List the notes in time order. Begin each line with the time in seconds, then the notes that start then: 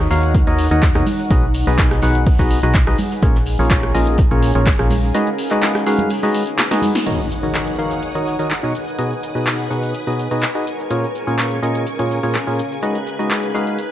Already playing: D#4 A#4 C#5 F#5
0.11 D#2 D#3 D#4 F#4 A#4 C#5 F5, closed hi-hat, open hi-hat
0.23 closed hi-hat, tambourine
0.34 kick, closed hi-hat, tambourine
0.47 D#2 D#3 D#4 F#4 A#4 C#5 D#5, closed hi-hat, tambourine
0.58 closed hi-hat, open hi-hat
0.71 D#2 D#3 D#4 F#4 A#4 C#5 D#5, closed hi-hat, tambourine
0.82 kick, snare, clap, closed hi-hat, tambourine
0.95 D#2 B2 D#4 F#4 A#4 C#5 D#5, cross-stick, closed hi-hat, tambourine
1.06 closed hi-hat, open hi-hat, high conga
1.18 tambourine
1.30 B1 B2 D#4 F#4 G#4 B4 D#5, kick, closed hi-hat, tambourine
1.43 tambourine
1.54 closed hi-hat, open hi-hat
1.60 B4
1.67 B1 B2 D#4 F#4 G#4 B4 D#5, tambourine
1.78 kick, snare, clap, closed hi-hat, tambourine
1.91 cross-stick, snare, closed hi-hat, tambourine
2.02 B1 B2 D#4 F#4 G#4 B4 F#5, closed hi-hat, open hi-hat
2.15 closed hi-hat, tambourine
2.26 kick, closed hi-hat, open hi-hat, tambourine
2.38 B1 B2 D#4 F#4 G#4 B4 D#5, kick, snare, closed hi-hat, tambourine
2.50 closed hi-hat, open hi-hat
2.63 B1 B2 D#4 F#4 G#4 B4 D#5, closed hi-hat, tambourine
2.74 kick, snare, clap, closed hi-hat, tambourine
2.87 B1 D#4 F#4 G#4 B4 D#5, cross-stick, tambourine
2.98 C#4, closed hi-hat, open hi-hat, high conga
3.12 closed hi-hat, tambourine
3.22 A#1 A#2 C#4 F4 G#4 A#4 C#5, kick, closed hi-hat, tambourine
3.35 snare, tambourine
3.46 A#4, closed hi-hat, open hi-hat
3.59 A#1 A#2 C#4 F4 G#4 A#4 C#5, tambourine
3.67 F5, kick, snare, clap, closed hi-hat
3.71 tambourine
3.83 cross-stick, closed hi-hat, tambourine
3.95 A#1 A#2 C#4 F4 G#4 A#4 D#5, closed hi-hat, open hi-hat
4.07 closed hi-hat, tambourine
4.18 kick, closed hi-hat, tambourine
4.31 A#1 A#2 C#4 F4 G#4 A#4 C#5, closed hi-hat, tambourine
4.43 closed hi-hat, open hi-hat
4.55 A#1 A#2 C#4 F4 G#4 A#4 C#5, closed hi-hat, tambourine
4.66 kick, snare, clap, closed hi-hat, tambourine
4.79 A#1 A#2 C#4 F4 G#4 A#4 C#5, cross-stick, closed hi-hat, tambourine
4.90 closed hi-hat, open hi-hat, high conga
5.03 tambourine
5.15 G#3 D#4 F#4 G#4 B4 D#5, closed hi-hat, tambourine
5.26 closed hi-hat, tambourine
5.38 closed hi-hat, open hi-hat
5.48 G#3 D#4 F#4 G#4 B4 D#5, clap, tambourine
5.62 snare, clap, closed hi-hat, tambourine
5.75 F#5, cross-stick, snare, closed hi-hat, tambourine
5.86 G#3 D#4 F#4 G#4 B4 F5, closed hi-hat, open hi-hat
5.99 closed hi-hat, tambourine, high conga
6.10 closed hi-hat, open hi-hat, tambourine
6.23 G#3 D#4 F#4 G#4 B4 D#5, snare, closed hi-hat, tambourine
6.34 closed hi-hat, open hi-hat
6.47 closed hi-hat, tambourine
6.58 snare, clap, closed hi-hat, tambourine
6.71 G#3 D#4 F#4 G#4 B4 D#5, snare, tambourine
6.82 closed hi-hat, open hi-hat, high conga
6.95 snare, closed hi-hat, tambourine
7.06 D#3 D#4 F#4 A#4 C#5 D#5 F#5 D#6, closed hi-hat, crash, impact, shaker
7.20 shaker
7.28 A#4, shaker
7.43 D#3 D#4 F#4 A#4 C#5 D#5, shaker
7.55 clap, closed hi-hat, shaker
7.67 closed hi-hat, shaker
7.78 D#3 D#4 F#4 A#4 C#5 F5, shaker
7.91 closed hi-hat, shaker
8.03 closed hi-hat, shaker
8.15 D#3 D#4 F#4 A#4 C#5 D#5, closed hi-hat, shaker
8.27 shaker
8.39 D#3 D#4 F#4 A#4 C#5 D#5, closed hi-hat, shaker
8.51 clap, closed hi-hat, shaker
8.63 B2 D#4 F#4 A#4 C#5 D#5, shaker
8.75 B4 G#5 D#6, closed hi-hat, shaker
8.88 B4, shaker
8.98 B2 D#4 F#4 G#4 B4 D#5, closed hi-hat, shaker
9.12 G#4, shaker
9.23 shaker
9.35 B2 D#4 F#4 G#4 B4 D#5, shaker
9.47 clap, closed hi-hat, shaker
9.59 closed hi-hat, shaker
9.70 B2 D#4 F#4 G#4 B4 F#5, shaker
9.83 closed hi-hat, shaker
9.95 closed hi-hat, shaker
10.07 B2 D#4 F#4 G#4 B4 D#5, closed hi-hat, shaker
10.19 shaker
10.31 B2 D#4 F#4 G#4 B4 D#5, closed hi-hat, shaker
10.43 clap, closed hi-hat, shaker
10.55 D#4 F#4 G#4 B4 D#5, shaker
10.66 C#4 A#4 C#6, shaker
10.80 shaker
10.91 A#2 C#4 F4 G#4 A#4 C#5, closed hi-hat, shaker
11.04 shaker
11.15 F5, closed hi-hat, shaker
11.27 A#2 C#4 F4 G#4 A#4 C#5, shaker
11.39 A#4, clap, closed hi-hat, shaker
11.51 closed hi-hat, shaker
11.63 A#2 C#4 F4 G#4 A#4 D#5, shaker
11.75 closed hi-hat, shaker
11.86 closed hi-hat, shaker
11.99 A#2 C#4 F4 G#4 A#4 C#5, closed hi-hat, shaker
12.11 shaker
12.23 A#2 C#4 F4 G#4 A#4 C#5, closed hi-hat, shaker
12.35 clap, closed hi-hat, shaker
12.47 A#2 C#4 F4 G#4 A#4 C#5, shaker
12.59 shaker
12.72 shaker
12.83 G#3 D#4 F#4 G#4 B4 D#5 F#6, closed hi-hat, shaker
12.95 closed hi-hat, shaker
13.07 shaker
13.13 B4
13.19 G#3 D#4 F#4 G#4 B4 D#5, shaker
13.30 clap, closed hi-hat, shaker
13.43 snare, closed hi-hat, shaker
13.54 G#3 D#4 F#4 G#4 B4 F5, shaker
13.67 F#5, closed hi-hat, shaker
13.79 closed hi-hat, shaker